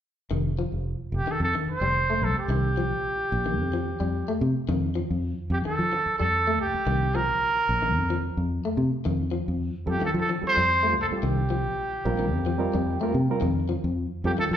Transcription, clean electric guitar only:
0.31 D#3
0.59 F3
1.27 D#3
1.55 D#3
1.82 G3
2.10 A3
2.50 D#3
2.77 F3
3.46 D#3
3.74 F3
4.00 G3
4.28 A3
4.69 D#3
4.95 F3
5.65 D#3
5.93 muted clean electric guitar stroke
6.20 G3
6.47 A3
6.87 D#3
7.15 F3
7.82 D#3
8.10 F3
8.65 A3
9.05 D#3
9.31 F3
10.02 D#3
10.29 F3
10.56 G3
10.83 A3
11.23 D#3
11.50 F3
12.19 D#3
12.46 F3
12.74 G3
13.01 A3
13.41 D#3
13.69 F3
14.38 D#3

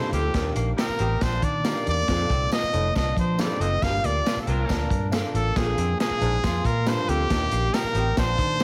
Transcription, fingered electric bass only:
0.12 D2
0.34 D#2
0.55 A#1
0.89 muted fingered electric bass stroke
1.00 A1
1.21 A#1
1.42 D#3
1.87 E2
2.08 F2
2.30 C2
2.63 muted fingered electric bass stroke
2.74 F1
2.96 C2
3.17 F3
3.60 F#1
3.82 G1
4.04 D2
4.36 muted fingered electric bass stroke
4.47 C2
4.70 D2
4.90 G2
5.34 A1
5.56 A#1
5.77 F2
6.10 muted fingered electric bass stroke
6.21 A#1
6.44 F2
6.64 A#2
7.08 D2
7.30 D#2
7.52 A#1
7.84 muted fingered electric bass stroke
7.94 A1
8.17 A#1
8.38 D#3

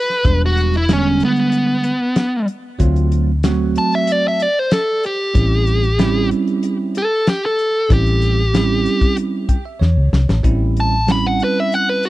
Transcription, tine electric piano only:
0.24 G3 G#3 B3 D4
0.89 D3 G3 G#3 B3
2.79 F#3 A3 C4 F4
3.44 F#3 A3 C4 F#4
5.34 G3 C4 C#4 E4
5.98 G3 C4 C#4 E4
7.89 G3 C4 C#4 E4
8.54 G3 C4 C#4 E4
9.49 G5
9.65 E5
9.79 C#5
10.43 G3 C4 C#4 E4
11.07 G3 C4 C#4 E4

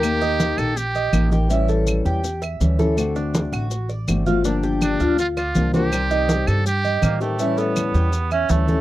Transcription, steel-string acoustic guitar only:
0.02 D#3 A#3 D#4 G4
0.76 muted steel-string acoustic guitar stroke
1.13 D#3 A#3 D#4 G4
1.32 A#3 D#4 G4
1.48 E3 G3 C#4 E4
2.24 muted steel-string acoustic guitar stroke
2.60 E3 G3 C#4 E4
2.78 G3 C#4 E4
2.96 D3 A3 C4 F#4
3.70 muted steel-string acoustic guitar stroke
4.07 D3 A3 C4 F#4
4.26 A3 C4 F#4
4.44 D3 F3 A#3 D4 G4
5.18 muted steel-string acoustic guitar stroke
5.55 F3 A#3 D4 G4
5.73 F3 A#3 D4 G4
5.91 C3 D#3 G3 C4 G4
6.65 muted steel-string acoustic guitar stroke
7.01 D#3 G3 C4 G4
7.20 D#3 G3 C4 G4
7.39 E3 G3 C#4 E4
8.12 muted steel-string acoustic guitar stroke
8.49 E3 G3 C#4 E4
8.67 G3 C#4 E4

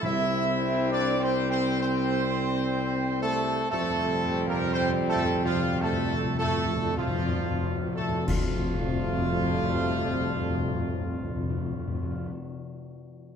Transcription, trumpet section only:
0.05 E5
0.92 D5
1.22 C5
1.51 C5
1.81 C5
3.23 A4
3.72 A4
4.49 A#4
4.74 C5
5.10 A4
5.45 F4
5.81 A4
6.38 A4
6.97 F4
7.96 A4
8.27 F4

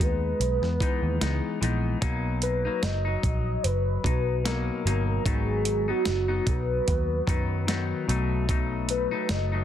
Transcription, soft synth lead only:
0.02 B4
2.43 B4
2.82 D#5
3.23 D#5
3.63 B4
4.45 A#4
5.26 G#4
5.89 F#4
6.48 B4
8.90 B4
9.30 D#5

